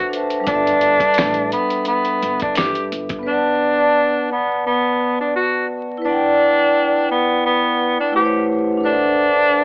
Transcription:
0.00 0.11 E5 medium
0.00 0.12 F#5 medium
0.09 0.42 D4 soft
0.09 0.46 A4 soft
0.09 0.47 B4 soft
0.13 0.48 C5 soft
0.13 0.49 E5 soft
0.13 0.49 A5 medium
0.13 closed hi-hat medium
0.30 closed hi-hat soft
0.40 3.19 G3 medium
0.40 3.21 D4 medium
0.47 0.98 G1 medium
0.47 1.48 D4 loud
0.47 3.23 A4 medium
0.47 kick loud
0.47 closed hi-hat medium
0.51 3.22 B4 medium
0.51 3.26 E5 medium
0.67 closed hi-hat medium
0.81 closed hi-hat medium
1.00 kick medium
1.00 closed hi-hat medium
1.14 closed hi-hat medium
1.18 1.50 A1 loud
1.18 finger snap medium
1.18 snare loud
1.34 closed hi-hat soft
1.52 1.84 B3 medium
1.52 closed hi-hat medium
1.70 closed hi-hat medium
1.85 2.38 B3 medium
1.85 closed hi-hat medium
2.05 closed hi-hat soft
2.23 2.55 G1 medium
2.23 closed hi-hat medium
2.40 2.56 D4 medium
2.40 kick medium
2.40 closed hi-hat soft
2.55 2.89 G2 medium
2.55 2.88 G4 medium
2.55 finger snap medium
2.55 snare loud
2.55 closed hi-hat medium
2.75 closed hi-hat soft
2.92 3.24 G1 medium
2.92 closed hi-hat medium
3.09 kick medium
3.09 closed hi-hat soft
3.19 5.98 B3 medium
3.19 6.00 B4 medium
3.26 4.27 D4 loud
3.26 6.01 D5 medium
3.26 6.03 F#5 medium
3.34 6.05 A5 medium
4.32 4.63 B3 medium
4.66 5.17 B3 medium
5.20 5.34 D4 medium
5.36 5.67 F#4 medium
5.98 8.07 E4 medium
5.98 8.09 B4 medium
6.05 7.06 D4 loud
6.05 8.11 D5 medium
6.05 8.12 F#5 medium
6.13 8.14 G5 medium
7.11 7.42 B3 medium
7.46 7.96 B3 medium
8.00 8.14 D4 medium
8.11 8.83 A3 medium
8.11 8.83 E4 medium
8.11 8.84 F#5 medium
8.16 8.47 G4 medium
8.16 8.85 G4 medium
8.16 8.82 B4 medium
8.16 8.24 C5 medium
8.25 8.90 C#5 medium
8.77 9.64 D4 medium
8.77 9.64 A4 medium
8.84 9.64 D4 loud
8.84 9.64 B4 medium
8.84 9.64 C5 medium
8.90 9.64 E5 medium
8.90 9.64 F#5 medium

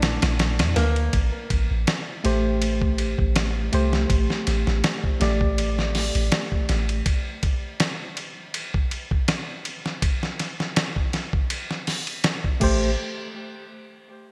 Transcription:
0.00 0.19 A#1 loud
0.00 0.73 A#2 medium
0.00 0.73 A3 medium
0.00 1.15 A3 medium
0.00 0.73 D4 medium
0.00 1.15 D4 medium
0.00 0.74 E4 medium
0.00 1.15 E4 medium
0.00 1.15 A4 medium
0.00 0.74 D5 medium
0.00 snare loud
0.00 ride medium
0.22 0.61 A#1 loud
0.22 snare loud
0.22 ride medium
0.39 snare loud
0.39 ride medium
0.59 0.74 F2 loud
0.59 snare loud
0.59 ride medium
0.76 1.09 D2 medium
0.76 1.11 A#3 loud
0.76 snare soft
0.76 ride medium
0.96 ride soft
1.13 1.31 A1 medium
1.13 kick loud
1.13 ride medium
1.50 1.68 A1 medium
1.50 kick medium
1.50 ride medium
1.71 1.85 A1 medium
1.87 snare loud
1.87 ride medium
2.24 3.15 A1 loud
2.24 3.68 A3 medium
2.24 3.69 G4 medium
2.24 3.69 C5 medium
2.24 ride medium
2.62 ride medium
2.82 kick loud
2.98 ride medium
3.19 3.69 A1 medium
3.19 kick loud
3.36 snare loud
3.36 ride medium
3.72 4.06 C2 medium
3.72 5.16 A3 medium
3.72 5.17 G4 medium
3.72 5.17 C5 medium
3.72 ride medium
3.93 snare medium
4.10 4.27 A1 loud
4.10 kick loud
4.10 ride medium
4.30 snare soft
4.47 4.65 A1 medium
4.47 snare soft
4.47 ride medium
4.67 4.82 A1 medium
4.67 snare soft
4.84 snare loud
4.84 ride medium
5.04 kick medium
5.20 6.11 A1 loud
5.20 7.04 A3 medium
5.20 7.04 G4 medium
5.20 7.04 D5 medium
5.20 snare soft
5.20 ride medium
5.41 kick medium
5.58 ride medium
5.79 snare soft
5.95 snare soft
5.95 open hi-hat medium
6.15 6.30 A1 loud
6.15 ride soft
6.32 snare loud
6.32 ride medium
6.52 kick medium
6.69 7.02 A1 medium
6.69 snare soft
6.69 ride medium
6.89 ride soft
7.06 kick loud
7.06 ride medium
7.43 kick loud
7.43 ride medium
7.80 snare loud
7.80 ride medium
8.17 ride medium
8.54 ride medium
8.74 kick loud
8.91 ride medium
9.11 kick loud
9.28 snare loud
9.28 ride medium
9.65 ride medium
9.86 snare medium
10.02 kick loud
10.02 ride medium
10.23 snare soft
10.39 snare soft
10.39 ride medium
10.60 snare soft
10.76 snare loud
10.76 ride medium
10.96 kick medium
11.13 snare soft
11.13 ride medium
11.33 kick loud
11.50 ride medium
11.71 snare soft
11.87 snare soft
11.87 open hi-hat medium
12.07 ride soft
12.24 snare loud
12.24 ride medium
12.44 kick medium
12.60 12.96 A1 loud
12.60 12.89 A3 medium
12.60 12.90 G4 medium
12.60 12.91 C5 loud
12.60 kick loud
12.60 crash medium

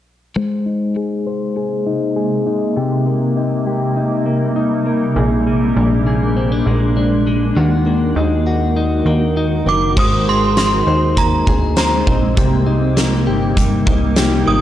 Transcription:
0.35 2.74 C3 medium
0.35 2.74 G#3 medium
0.35 2.76 G#3 medium
0.35 7.52 A#3 medium
0.35 1.26 C5 medium
0.66 1.86 D#4 soft
0.97 1.55 G#4 soft
1.27 3.10 C5 medium
1.57 2.15 G#4 soft
1.86 2.46 D#4 soft
2.16 2.77 G#4 medium
2.47 3.36 D#4 soft
2.76 5.16 C3 medium
2.76 5.15 C3 medium
2.76 5.15 G3 medium
2.76 5.15 D#4 medium
2.76 3.66 G4 medium
3.07 4.26 A#3 soft
3.37 3.95 D#4 soft
3.67 5.17 G4 medium
3.96 4.55 D#4 soft
4.26 4.86 A#3 medium
4.56 5.22 D#4 medium
4.86 5.47 A#3 soft
5.16 5.73 A#1 loud
5.16 7.57 A#2 medium
5.16 7.54 G#3 medium
5.16 7.54 D4 medium
5.16 6.05 G#4 medium
5.47 6.66 G#3 soft
5.76 6.63 A#1 loud
5.76 6.36 D4 soft
6.07 7.57 G#4 medium
6.37 6.52 C4 medium
6.52 6.95 D4 soft
6.66 7.52 A#1 medium
6.66 7.26 G#3 soft
6.97 7.63 D4 soft
7.27 7.63 G#3 soft
7.56 8.14 D#2 loud
7.56 9.97 D#3 medium
7.56 9.95 D#3 medium
7.56 9.94 D#4 medium
7.56 9.94 F#4 medium
7.56 8.46 F#4 medium
7.56 9.94 A#4 medium
7.86 9.06 A#3 medium
8.16 9.02 D#2 loud
8.16 8.76 D#4 medium
8.47 10.03 F#4 medium
8.76 9.37 D#4 soft
9.05 9.63 D#2 medium
9.05 9.67 A#3 medium
9.37 10.56 D#4 medium
9.66 9.95 F#1 medium
9.66 10.30 A#3 soft
9.66 9.99 D6 medium
9.97 10.83 G#1 loud
9.97 12.37 G#3 medium
9.97 12.35 G#3 medium
9.97 14.61 A#3 medium
9.97 12.35 C4 medium
9.97 10.87 C5 medium
9.97 10.29 D#6 medium
9.97 kick loud
9.97 crash medium
10.27 11.46 G#4 medium
10.27 10.57 C6 medium
10.57 12.07 D#4 medium
10.57 11.19 C6 medium
10.57 snare medium
10.57 closed hi-hat medium
10.87 11.44 D#2 medium
10.87 11.76 C5 medium
11.17 12.96 A#3 medium
11.17 11.77 A#5 medium
11.17 kick medium
11.17 closed hi-hat medium
11.47 12.04 D2 medium
11.47 12.37 G#4 medium
11.47 kick medium
11.76 13.00 C5 medium
11.76 12.19 A#5 medium
11.76 snare loud
11.76 closed hi-hat medium
12.07 12.35 A#1 medium
12.07 12.66 D#4 soft
12.07 kick medium
12.37 13.29 C2 medium
12.37 14.61 C3 medium
12.37 14.61 G3 medium
12.37 14.61 D#4 medium
12.37 13.26 G4 medium
12.37 kick loud
12.37 closed hi-hat medium
12.66 13.85 D#4 medium
12.97 14.46 A#3 medium
12.97 snare medium
12.97 closed hi-hat medium
13.27 13.84 G1 loud
13.27 14.15 G4 medium
13.57 14.61 G3 medium
13.57 kick medium
13.57 closed hi-hat medium
13.86 14.44 C2 medium
13.86 14.61 D#4 medium
13.86 kick medium
14.16 14.61 G4 medium
14.16 snare loud
14.16 closed hi-hat medium
14.46 14.61 G#1 medium
14.46 14.61 A#3 medium
14.46 14.61 D#6 medium

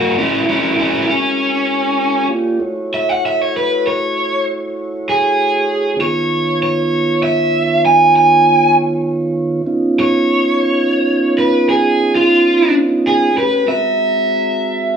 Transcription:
0.00 2.24 G#3 medium
0.00 0.14 A#3 medium
0.00 2.24 E4 medium
0.00 0.15 F#4 medium
0.00 2.24 F#4 medium
0.00 2.24 A#4 medium
0.18 0.45 C#4 medium
0.18 0.46 E4 medium
0.49 0.76 C#4 medium
0.49 0.77 E4 medium
0.79 1.06 C#4 medium
0.79 1.07 E4 medium
1.10 2.27 C#4 loud
2.29 2.59 A#3 medium
2.29 2.59 F4 medium
2.29 2.59 G4 medium
2.29 2.59 D5 medium
2.60 5.94 A3 medium
2.60 5.94 E4 medium
2.60 5.94 F#4 medium
2.60 5.94 C#5 medium
2.94 3.09 E5 medium
3.09 3.22 F#5 medium
3.26 3.41 E5 medium
3.41 3.54 C#5 medium
3.57 3.84 B4 medium
3.87 4.44 C#5 medium
5.09 5.97 G#4 medium
5.96 9.62 D#3 medium
5.96 9.62 B3 medium
5.96 9.62 F4 medium
5.96 9.62 C#5 medium
6.01 6.59 C#5 medium
6.63 7.20 C#5 medium
7.23 7.81 E5 medium
7.85 8.13 G#5 medium
8.16 8.74 G#5 medium
9.66 13.31 B3 medium
9.66 13.31 C#4 medium
9.66 13.31 D#4 medium
9.66 13.32 F4 medium
10.00 11.32 C#5 loud
11.38 11.66 B4 medium
11.69 12.12 G#4 medium
12.15 12.73 F4 loud
13.07 13.35 G#4 medium
13.33 13.65 A3 medium
13.33 13.65 C#4 medium
13.33 13.65 G4 medium
13.33 13.65 B4 medium
13.38 13.66 B4 medium
13.65 14.97 G#3 medium
13.65 14.97 C4 medium
13.65 14.97 F#4 medium
13.65 14.97 E5 medium
13.65 14.97 A#5 medium

